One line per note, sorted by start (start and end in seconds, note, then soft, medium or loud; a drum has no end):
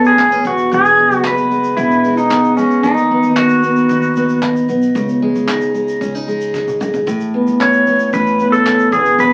0.00 0.41 A1 loud
0.00 0.45 A2 medium
0.00 0.18 B3 medium
0.00 0.18 C#4 medium
0.00 1.03 E4 medium
0.05 0.43 G#4 medium
0.05 shaker soft
0.18 0.32 B3 medium
0.18 kick loud
0.18 clap medium
0.18 shaker medium
0.31 0.50 C#4 soft
0.31 shaker soft
0.45 0.69 E1 medium
0.45 0.70 E2 medium
0.45 0.73 F#4 medium
0.45 kick medium
0.45 shaker soft
0.58 shaker soft
0.71 1.12 E1 loud
0.71 2.83 E2 medium
0.71 1.16 G#4 medium
0.71 shaker medium
0.85 shaker soft
0.99 1.50 G#3 medium
1.12 1.74 F#1 medium
1.12 shaker soft
1.16 1.27 F#4 medium
1.24 1.77 B3 medium
1.24 2.01 B4 medium
1.24 kick loud
1.24 clap loud
1.24 shaker medium
1.37 shaker soft
1.51 2.04 G#3 medium
1.51 shaker soft
1.64 shaker medium
1.77 2.53 E1 medium
1.77 2.30 B3 medium
1.77 2.17 E4 medium
1.77 kick medium
1.77 shaker medium
1.91 shaker soft
2.04 2.57 G#3 medium
2.04 shaker soft
2.17 2.56 D#4 medium
2.17 shaker medium
2.30 3.11 B3 medium
2.30 kick medium
2.30 clap medium
2.30 shaker medium
2.44 shaker soft
2.57 2.89 G#3 medium
2.57 2.83 C#4 medium
2.57 shaker soft
2.70 shaker soft
2.83 3.20 D#2 medium
2.83 4.99 D#3 medium
2.83 3.33 D#4 medium
2.83 kick loud
2.83 shaker medium
2.97 shaker soft
3.11 3.63 B3 medium
3.23 3.86 D#2 medium
3.23 shaker soft
3.36 3.90 D#4 medium
3.36 4.38 F#4 medium
3.36 kick medium
3.36 clap loud
3.36 shaker medium
3.49 shaker soft
3.63 4.15 B3 soft
3.63 shaker soft
3.76 shaker soft
3.89 4.65 D#2 medium
3.89 4.42 D#4 medium
3.89 kick medium
3.89 shaker medium
4.02 shaker soft
4.16 4.67 B3 medium
4.16 shaker soft
4.29 shaker soft
4.42 5.48 D#4 medium
4.42 kick medium
4.42 clap medium
4.42 shaker medium
4.56 shaker soft
4.68 4.93 B1 medium
4.68 5.00 B3 medium
4.68 shaker soft
4.82 shaker soft
4.95 5.32 C#2 loud
4.95 7.06 C#3 medium
4.95 kick loud
4.95 shaker medium
5.09 shaker soft
5.22 5.73 G#3 medium
5.36 5.98 C#2 medium
5.36 shaker soft
5.48 6.01 D#4 medium
5.48 kick loud
5.48 clap loud
5.48 shaker medium
5.61 shaker soft
5.74 6.26 G#3 soft
5.74 shaker soft
5.88 shaker soft
6.01 6.77 C#2 medium
6.01 6.15 C#4 medium
6.01 kick medium
6.01 shaker medium
6.15 6.53 D#4 soft
6.15 shaker soft
6.28 6.79 G#3 medium
6.28 shaker soft
6.41 shaker medium
6.54 7.13 D#4 medium
6.54 kick medium
6.54 snare soft
6.54 shaker medium
6.68 high tom medium
6.68 shaker soft
6.80 7.12 G#3 medium
6.80 mid tom medium
6.80 shaker medium
6.94 floor tom medium
6.94 shaker soft
7.07 7.44 A1 medium
7.07 8.93 A2 medium
7.07 kick loud
7.07 shaker medium
7.20 shaker soft
7.34 7.87 B3 medium
7.47 8.10 A1 medium
7.47 shaker soft
7.60 8.12 C#4 medium
7.60 8.13 C#5 medium
7.60 kick loud
7.60 clap loud
7.60 shaker medium
7.73 shaker soft
7.87 8.40 B3 medium
7.87 shaker soft
7.99 shaker soft
8.13 8.89 A1 loud
8.13 8.65 C#4 medium
8.13 8.54 B4 medium
8.13 kick medium
8.13 shaker medium
8.26 shaker soft
8.39 9.33 B3 medium
8.39 shaker soft
8.52 8.92 A4 medium
8.52 shaker medium
8.66 8.98 C#4 medium
8.66 kick loud
8.66 clap loud
8.66 shaker medium
8.79 shaker soft
8.92 9.17 E1 medium
8.92 9.18 E2 medium
8.92 9.20 G#4 medium
8.92 kick medium
8.92 shaker soft
9.05 shaker soft
9.18 9.33 E1 loud
9.18 9.33 E2 medium
9.18 9.33 B4 medium
9.18 shaker medium